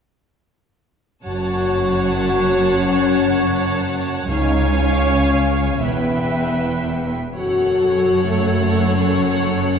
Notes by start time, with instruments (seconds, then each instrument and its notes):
1.25 double bass section F#1, cello section F#2, french horn section F#4, viola section C#5, violin section F#5 A5
2.78 french horn section C#4
4.30 cello section C#2, double bass section C#2, french horn section D#4, viola section C#5, violin section F5 G#5
4.72 french horn section C#4
5.83 double bass section E1, cello section E2, french horn section B3, viola section B4, violin section E5 G5
7.36 double bass section F#1, cello section F#2, french horn section F#4, viola section A4, violin section C#5 F#5
8.24 french horn section A3
8.88 french horn section C#4